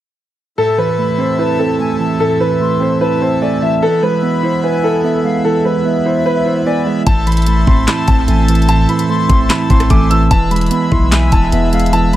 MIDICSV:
0, 0, Header, 1, 7, 480
1, 0, Start_track
1, 0, Key_signature, 0, "minor"
1, 0, Tempo, 405405
1, 686, Time_signature, 4, 2, 24, 8
1, 14405, End_track
2, 0, Start_track
2, 0, Title_t, "Flute"
2, 0, Program_c, 0, 73
2, 1172, Note_on_c, 0, 83, 80
2, 1620, Note_off_c, 0, 83, 0
2, 1646, Note_on_c, 0, 81, 93
2, 2097, Note_off_c, 0, 81, 0
2, 2130, Note_on_c, 0, 80, 82
2, 2356, Note_off_c, 0, 80, 0
2, 2363, Note_on_c, 0, 81, 85
2, 2592, Note_off_c, 0, 81, 0
2, 3088, Note_on_c, 0, 84, 88
2, 3538, Note_off_c, 0, 84, 0
2, 3565, Note_on_c, 0, 81, 83
2, 4016, Note_off_c, 0, 81, 0
2, 4045, Note_on_c, 0, 80, 79
2, 4273, Note_off_c, 0, 80, 0
2, 4287, Note_on_c, 0, 81, 79
2, 4514, Note_off_c, 0, 81, 0
2, 5005, Note_on_c, 0, 83, 77
2, 5457, Note_off_c, 0, 83, 0
2, 5481, Note_on_c, 0, 80, 93
2, 5935, Note_off_c, 0, 80, 0
2, 5968, Note_on_c, 0, 76, 90
2, 6195, Note_off_c, 0, 76, 0
2, 6208, Note_on_c, 0, 77, 86
2, 6435, Note_off_c, 0, 77, 0
2, 6930, Note_on_c, 0, 76, 98
2, 7841, Note_off_c, 0, 76, 0
2, 7884, Note_on_c, 0, 80, 83
2, 8113, Note_off_c, 0, 80, 0
2, 8123, Note_on_c, 0, 76, 77
2, 8352, Note_off_c, 0, 76, 0
2, 8849, Note_on_c, 0, 83, 84
2, 9299, Note_off_c, 0, 83, 0
2, 9324, Note_on_c, 0, 81, 103
2, 9776, Note_off_c, 0, 81, 0
2, 9809, Note_on_c, 0, 80, 89
2, 10035, Note_off_c, 0, 80, 0
2, 10043, Note_on_c, 0, 81, 96
2, 10272, Note_off_c, 0, 81, 0
2, 10768, Note_on_c, 0, 84, 95
2, 11218, Note_off_c, 0, 84, 0
2, 11245, Note_on_c, 0, 81, 86
2, 11697, Note_off_c, 0, 81, 0
2, 11724, Note_on_c, 0, 80, 85
2, 11953, Note_off_c, 0, 80, 0
2, 11967, Note_on_c, 0, 81, 85
2, 12194, Note_off_c, 0, 81, 0
2, 12684, Note_on_c, 0, 83, 82
2, 13136, Note_off_c, 0, 83, 0
2, 13163, Note_on_c, 0, 80, 98
2, 13616, Note_off_c, 0, 80, 0
2, 13646, Note_on_c, 0, 76, 94
2, 13874, Note_off_c, 0, 76, 0
2, 13888, Note_on_c, 0, 77, 88
2, 14115, Note_off_c, 0, 77, 0
2, 14405, End_track
3, 0, Start_track
3, 0, Title_t, "Grand piano"
3, 0, Program_c, 1, 0
3, 686, Note_on_c, 1, 69, 102
3, 903, Note_off_c, 1, 69, 0
3, 925, Note_on_c, 1, 71, 82
3, 1377, Note_off_c, 1, 71, 0
3, 1407, Note_on_c, 1, 72, 74
3, 1624, Note_off_c, 1, 72, 0
3, 1645, Note_on_c, 1, 71, 75
3, 1863, Note_off_c, 1, 71, 0
3, 1884, Note_on_c, 1, 69, 76
3, 2561, Note_off_c, 1, 69, 0
3, 2606, Note_on_c, 1, 69, 96
3, 2823, Note_off_c, 1, 69, 0
3, 2846, Note_on_c, 1, 71, 83
3, 3297, Note_off_c, 1, 71, 0
3, 3326, Note_on_c, 1, 72, 70
3, 3543, Note_off_c, 1, 72, 0
3, 3565, Note_on_c, 1, 71, 85
3, 3782, Note_off_c, 1, 71, 0
3, 3806, Note_on_c, 1, 72, 78
3, 4023, Note_off_c, 1, 72, 0
3, 4048, Note_on_c, 1, 74, 75
3, 4264, Note_off_c, 1, 74, 0
3, 4288, Note_on_c, 1, 76, 79
3, 4504, Note_off_c, 1, 76, 0
3, 4529, Note_on_c, 1, 69, 100
3, 4745, Note_off_c, 1, 69, 0
3, 4768, Note_on_c, 1, 71, 86
3, 5218, Note_off_c, 1, 71, 0
3, 5248, Note_on_c, 1, 72, 72
3, 5464, Note_off_c, 1, 72, 0
3, 5488, Note_on_c, 1, 71, 75
3, 5704, Note_off_c, 1, 71, 0
3, 5730, Note_on_c, 1, 69, 80
3, 6404, Note_off_c, 1, 69, 0
3, 6448, Note_on_c, 1, 69, 86
3, 6664, Note_off_c, 1, 69, 0
3, 6688, Note_on_c, 1, 71, 76
3, 7138, Note_off_c, 1, 71, 0
3, 7167, Note_on_c, 1, 72, 79
3, 7383, Note_off_c, 1, 72, 0
3, 7410, Note_on_c, 1, 71, 89
3, 7625, Note_off_c, 1, 71, 0
3, 7649, Note_on_c, 1, 72, 74
3, 7865, Note_off_c, 1, 72, 0
3, 7889, Note_on_c, 1, 74, 85
3, 8104, Note_off_c, 1, 74, 0
3, 8127, Note_on_c, 1, 76, 82
3, 8344, Note_off_c, 1, 76, 0
3, 8366, Note_on_c, 1, 81, 106
3, 8583, Note_off_c, 1, 81, 0
3, 8606, Note_on_c, 1, 83, 89
3, 9057, Note_off_c, 1, 83, 0
3, 9085, Note_on_c, 1, 84, 84
3, 9302, Note_off_c, 1, 84, 0
3, 9326, Note_on_c, 1, 83, 79
3, 9543, Note_off_c, 1, 83, 0
3, 9564, Note_on_c, 1, 81, 83
3, 10242, Note_off_c, 1, 81, 0
3, 10286, Note_on_c, 1, 81, 101
3, 10503, Note_off_c, 1, 81, 0
3, 10527, Note_on_c, 1, 83, 85
3, 10977, Note_off_c, 1, 83, 0
3, 11005, Note_on_c, 1, 84, 79
3, 11222, Note_off_c, 1, 84, 0
3, 11244, Note_on_c, 1, 83, 91
3, 11462, Note_off_c, 1, 83, 0
3, 11485, Note_on_c, 1, 84, 83
3, 11702, Note_off_c, 1, 84, 0
3, 11726, Note_on_c, 1, 86, 80
3, 11943, Note_off_c, 1, 86, 0
3, 11965, Note_on_c, 1, 88, 84
3, 12182, Note_off_c, 1, 88, 0
3, 12206, Note_on_c, 1, 81, 106
3, 12423, Note_off_c, 1, 81, 0
3, 12445, Note_on_c, 1, 83, 92
3, 12896, Note_off_c, 1, 83, 0
3, 12926, Note_on_c, 1, 84, 79
3, 13143, Note_off_c, 1, 84, 0
3, 13167, Note_on_c, 1, 83, 80
3, 13383, Note_off_c, 1, 83, 0
3, 13407, Note_on_c, 1, 81, 84
3, 14083, Note_off_c, 1, 81, 0
3, 14125, Note_on_c, 1, 81, 90
3, 14343, Note_off_c, 1, 81, 0
3, 14366, Note_on_c, 1, 83, 77
3, 14405, Note_off_c, 1, 83, 0
3, 14405, End_track
4, 0, Start_track
4, 0, Title_t, "Accordion"
4, 0, Program_c, 2, 21
4, 687, Note_on_c, 2, 64, 68
4, 688, Note_on_c, 2, 48, 75
4, 688, Note_on_c, 2, 57, 68
4, 688, Note_on_c, 2, 69, 85
4, 4488, Note_off_c, 2, 48, 0
4, 4488, Note_off_c, 2, 57, 0
4, 4488, Note_off_c, 2, 69, 0
4, 4526, Note_on_c, 2, 59, 68
4, 4526, Note_on_c, 2, 71, 86
4, 4527, Note_on_c, 2, 47, 77
4, 8319, Note_off_c, 2, 64, 0
4, 8327, Note_off_c, 2, 71, 0
4, 8328, Note_off_c, 2, 47, 0
4, 8328, Note_off_c, 2, 59, 0
4, 8364, Note_on_c, 2, 69, 74
4, 8365, Note_on_c, 2, 64, 80
4, 8365, Note_on_c, 2, 72, 73
4, 8365, Note_on_c, 2, 81, 89
4, 12166, Note_off_c, 2, 69, 0
4, 12167, Note_off_c, 2, 72, 0
4, 12167, Note_off_c, 2, 81, 0
4, 12206, Note_on_c, 2, 71, 76
4, 12206, Note_on_c, 2, 76, 89
4, 12207, Note_on_c, 2, 56, 72
4, 14405, Note_off_c, 2, 56, 0
4, 14405, Note_off_c, 2, 64, 0
4, 14405, Note_off_c, 2, 71, 0
4, 14405, Note_off_c, 2, 76, 0
4, 14405, End_track
5, 0, Start_track
5, 0, Title_t, "Tine electric piano"
5, 0, Program_c, 3, 4
5, 687, Note_on_c, 3, 45, 82
5, 879, Control_c, 3, 64, 127
5, 925, Note_on_c, 3, 52, 73
5, 1167, Note_on_c, 3, 57, 75
5, 1399, Note_on_c, 3, 60, 88
5, 1643, Note_on_c, 3, 64, 78
5, 1874, Note_off_c, 3, 60, 0
5, 1886, Note_off_c, 3, 45, 0
5, 1888, Note_on_c, 3, 60, 77
5, 2113, Note_off_c, 3, 57, 0
5, 2125, Note_off_c, 3, 52, 0
5, 2127, Note_on_c, 3, 57, 88
5, 2364, Note_on_c, 3, 52, 72
5, 2605, Note_on_c, 3, 45, 83
5, 2831, Note_off_c, 3, 52, 0
5, 2844, Note_off_c, 3, 64, 0
5, 2845, Note_on_c, 3, 52, 72
5, 3069, Note_off_c, 3, 57, 0
5, 3083, Note_on_c, 3, 57, 76
5, 3087, Note_off_c, 3, 60, 0
5, 3317, Note_on_c, 3, 60, 90
5, 3564, Note_on_c, 3, 64, 76
5, 3791, Note_off_c, 3, 60, 0
5, 3805, Note_off_c, 3, 45, 0
5, 3805, Note_on_c, 3, 60, 80
5, 4030, Note_off_c, 3, 57, 0
5, 4045, Note_off_c, 3, 52, 0
5, 4045, Note_on_c, 3, 57, 88
5, 4291, Note_on_c, 3, 52, 71
5, 4519, Note_off_c, 3, 52, 0
5, 4525, Note_off_c, 3, 57, 0
5, 4525, Note_off_c, 3, 60, 0
5, 4525, Note_off_c, 3, 64, 0
5, 4533, Note_on_c, 3, 52, 89
5, 4539, Control_c, 3, 64, 0
5, 4761, Note_on_c, 3, 56, 71
5, 4781, Control_c, 3, 64, 127
5, 5003, Note_on_c, 3, 59, 82
5, 5245, Note_on_c, 3, 64, 94
5, 5481, Note_on_c, 3, 76, 77
5, 5708, Note_off_c, 3, 64, 0
5, 5723, Note_on_c, 3, 64, 75
5, 5729, Note_off_c, 3, 52, 0
5, 5954, Note_off_c, 3, 59, 0
5, 5963, Note_off_c, 3, 56, 0
5, 5968, Note_on_c, 3, 59, 94
5, 6209, Note_on_c, 3, 56, 68
5, 6451, Note_on_c, 3, 52, 89
5, 6668, Note_off_c, 3, 56, 0
5, 6682, Note_on_c, 3, 56, 73
5, 6683, Note_off_c, 3, 76, 0
5, 6908, Note_off_c, 3, 59, 0
5, 6922, Note_on_c, 3, 59, 84
5, 6924, Note_off_c, 3, 64, 0
5, 7169, Note_on_c, 3, 64, 95
5, 7409, Note_on_c, 3, 76, 88
5, 7625, Note_off_c, 3, 64, 0
5, 7639, Note_on_c, 3, 64, 75
5, 7648, Note_off_c, 3, 52, 0
5, 7875, Note_off_c, 3, 59, 0
5, 7884, Note_off_c, 3, 56, 0
5, 7889, Note_on_c, 3, 59, 89
5, 8123, Note_on_c, 3, 56, 74
5, 8362, Note_off_c, 3, 64, 0
5, 8364, Note_off_c, 3, 56, 0
5, 8367, Note_off_c, 3, 59, 0
5, 8367, Note_off_c, 3, 76, 0
5, 8369, Note_on_c, 3, 45, 90
5, 8383, Control_c, 3, 64, 0
5, 8606, Note_on_c, 3, 52, 78
5, 8616, Control_c, 3, 64, 127
5, 8848, Note_on_c, 3, 57, 79
5, 9081, Note_on_c, 3, 60, 91
5, 9323, Note_on_c, 3, 64, 82
5, 9554, Note_off_c, 3, 60, 0
5, 9567, Note_off_c, 3, 45, 0
5, 9568, Note_on_c, 3, 60, 81
5, 9791, Note_off_c, 3, 57, 0
5, 9805, Note_on_c, 3, 57, 91
5, 9806, Note_off_c, 3, 52, 0
5, 10043, Note_on_c, 3, 52, 78
5, 10286, Note_on_c, 3, 45, 87
5, 10510, Note_off_c, 3, 52, 0
5, 10524, Note_off_c, 3, 64, 0
5, 10524, Note_on_c, 3, 52, 75
5, 10750, Note_off_c, 3, 57, 0
5, 10764, Note_on_c, 3, 57, 79
5, 10767, Note_off_c, 3, 60, 0
5, 10998, Note_on_c, 3, 60, 90
5, 11245, Note_on_c, 3, 64, 81
5, 11472, Note_off_c, 3, 60, 0
5, 11486, Note_off_c, 3, 45, 0
5, 11486, Note_on_c, 3, 60, 84
5, 11711, Note_off_c, 3, 57, 0
5, 11725, Note_off_c, 3, 52, 0
5, 11725, Note_on_c, 3, 57, 95
5, 11973, Note_on_c, 3, 52, 78
5, 12199, Note_off_c, 3, 52, 0
5, 12205, Note_off_c, 3, 64, 0
5, 12206, Note_off_c, 3, 57, 0
5, 12206, Note_off_c, 3, 60, 0
5, 12213, Note_on_c, 3, 52, 93
5, 12223, Control_c, 3, 64, 0
5, 12438, Control_c, 3, 64, 127
5, 12442, Note_on_c, 3, 56, 73
5, 12683, Note_on_c, 3, 59, 86
5, 12927, Note_on_c, 3, 64, 100
5, 13162, Note_on_c, 3, 76, 81
5, 13389, Note_off_c, 3, 64, 0
5, 13403, Note_on_c, 3, 64, 78
5, 13410, Note_off_c, 3, 52, 0
5, 13634, Note_off_c, 3, 59, 0
5, 13644, Note_off_c, 3, 56, 0
5, 13648, Note_on_c, 3, 59, 100
5, 13888, Note_on_c, 3, 56, 72
5, 14128, Note_on_c, 3, 52, 89
5, 14346, Note_off_c, 3, 56, 0
5, 14360, Note_on_c, 3, 56, 76
5, 14364, Note_off_c, 3, 76, 0
5, 14405, Note_off_c, 3, 52, 0
5, 14405, Note_off_c, 3, 56, 0
5, 14405, Note_off_c, 3, 59, 0
5, 14405, Note_off_c, 3, 64, 0
5, 14405, End_track
6, 0, Start_track
6, 0, Title_t, "808-style bass"
6, 0, Program_c, 4, 38
6, 8366, Note_on_c, 4, 33, 111
6, 9057, Note_off_c, 4, 33, 0
6, 9085, Note_on_c, 4, 33, 109
6, 9316, Note_off_c, 4, 33, 0
6, 9565, Note_on_c, 4, 33, 107
6, 9796, Note_off_c, 4, 33, 0
6, 9806, Note_on_c, 4, 33, 106
6, 10497, Note_off_c, 4, 33, 0
6, 11005, Note_on_c, 4, 33, 110
6, 11236, Note_off_c, 4, 33, 0
6, 11485, Note_on_c, 4, 33, 111
6, 11716, Note_off_c, 4, 33, 0
6, 11725, Note_on_c, 4, 33, 106
6, 12186, Note_off_c, 4, 33, 0
6, 12206, Note_on_c, 4, 28, 113
6, 12667, Note_off_c, 4, 28, 0
6, 12926, Note_on_c, 4, 35, 105
6, 13387, Note_off_c, 4, 35, 0
6, 13406, Note_on_c, 4, 28, 106
6, 13636, Note_off_c, 4, 28, 0
6, 13646, Note_on_c, 4, 28, 107
6, 14405, Note_off_c, 4, 28, 0
6, 14405, End_track
7, 0, Start_track
7, 0, Title_t, "Drums"
7, 8366, Note_on_c, 9, 36, 114
7, 8366, Note_on_c, 9, 42, 88
7, 8484, Note_off_c, 9, 36, 0
7, 8484, Note_off_c, 9, 42, 0
7, 8607, Note_on_c, 9, 42, 71
7, 8667, Note_off_c, 9, 42, 0
7, 8667, Note_on_c, 9, 42, 61
7, 8726, Note_off_c, 9, 42, 0
7, 8726, Note_on_c, 9, 42, 54
7, 8786, Note_off_c, 9, 42, 0
7, 8786, Note_on_c, 9, 42, 45
7, 8838, Note_off_c, 9, 42, 0
7, 8838, Note_on_c, 9, 42, 100
7, 8956, Note_off_c, 9, 42, 0
7, 9085, Note_on_c, 9, 36, 90
7, 9204, Note_off_c, 9, 36, 0
7, 9325, Note_on_c, 9, 38, 118
7, 9325, Note_on_c, 9, 42, 80
7, 9331, Note_on_c, 9, 39, 96
7, 9443, Note_off_c, 9, 38, 0
7, 9444, Note_off_c, 9, 42, 0
7, 9449, Note_off_c, 9, 39, 0
7, 9562, Note_on_c, 9, 42, 80
7, 9565, Note_on_c, 9, 36, 90
7, 9680, Note_off_c, 9, 42, 0
7, 9683, Note_off_c, 9, 36, 0
7, 9803, Note_on_c, 9, 42, 73
7, 9922, Note_off_c, 9, 42, 0
7, 10045, Note_on_c, 9, 42, 85
7, 10125, Note_off_c, 9, 42, 0
7, 10125, Note_on_c, 9, 42, 67
7, 10205, Note_off_c, 9, 42, 0
7, 10205, Note_on_c, 9, 42, 50
7, 10284, Note_off_c, 9, 42, 0
7, 10284, Note_on_c, 9, 42, 90
7, 10403, Note_off_c, 9, 42, 0
7, 10524, Note_on_c, 9, 42, 45
7, 10643, Note_off_c, 9, 42, 0
7, 10644, Note_on_c, 9, 42, 78
7, 10763, Note_off_c, 9, 42, 0
7, 11005, Note_on_c, 9, 36, 92
7, 11006, Note_on_c, 9, 42, 74
7, 11123, Note_off_c, 9, 36, 0
7, 11124, Note_off_c, 9, 42, 0
7, 11245, Note_on_c, 9, 38, 117
7, 11245, Note_on_c, 9, 42, 82
7, 11250, Note_on_c, 9, 39, 98
7, 11363, Note_off_c, 9, 38, 0
7, 11364, Note_off_c, 9, 42, 0
7, 11369, Note_off_c, 9, 39, 0
7, 11485, Note_on_c, 9, 36, 91
7, 11485, Note_on_c, 9, 42, 62
7, 11603, Note_off_c, 9, 42, 0
7, 11604, Note_off_c, 9, 36, 0
7, 11605, Note_on_c, 9, 37, 74
7, 11605, Note_on_c, 9, 42, 65
7, 11723, Note_off_c, 9, 42, 0
7, 11723, Note_on_c, 9, 42, 70
7, 11724, Note_off_c, 9, 37, 0
7, 11725, Note_on_c, 9, 36, 96
7, 11841, Note_off_c, 9, 42, 0
7, 11844, Note_off_c, 9, 36, 0
7, 11968, Note_on_c, 9, 42, 88
7, 12086, Note_off_c, 9, 42, 0
7, 12205, Note_on_c, 9, 42, 88
7, 12206, Note_on_c, 9, 36, 112
7, 12324, Note_off_c, 9, 36, 0
7, 12324, Note_off_c, 9, 42, 0
7, 12446, Note_on_c, 9, 42, 72
7, 12506, Note_off_c, 9, 42, 0
7, 12506, Note_on_c, 9, 42, 62
7, 12566, Note_off_c, 9, 42, 0
7, 12566, Note_on_c, 9, 42, 54
7, 12626, Note_off_c, 9, 42, 0
7, 12626, Note_on_c, 9, 42, 44
7, 12679, Note_off_c, 9, 42, 0
7, 12679, Note_on_c, 9, 42, 101
7, 12797, Note_off_c, 9, 42, 0
7, 12926, Note_on_c, 9, 36, 90
7, 13044, Note_off_c, 9, 36, 0
7, 13165, Note_on_c, 9, 38, 118
7, 13166, Note_on_c, 9, 42, 84
7, 13171, Note_on_c, 9, 39, 99
7, 13284, Note_off_c, 9, 38, 0
7, 13284, Note_off_c, 9, 42, 0
7, 13289, Note_off_c, 9, 39, 0
7, 13402, Note_on_c, 9, 42, 79
7, 13406, Note_on_c, 9, 36, 94
7, 13521, Note_off_c, 9, 42, 0
7, 13524, Note_off_c, 9, 36, 0
7, 13644, Note_on_c, 9, 42, 71
7, 13763, Note_off_c, 9, 42, 0
7, 13885, Note_on_c, 9, 42, 85
7, 13965, Note_off_c, 9, 42, 0
7, 13965, Note_on_c, 9, 42, 67
7, 14045, Note_off_c, 9, 42, 0
7, 14045, Note_on_c, 9, 42, 49
7, 14125, Note_off_c, 9, 42, 0
7, 14125, Note_on_c, 9, 42, 87
7, 14243, Note_off_c, 9, 42, 0
7, 14365, Note_on_c, 9, 42, 45
7, 14405, Note_off_c, 9, 42, 0
7, 14405, End_track
0, 0, End_of_file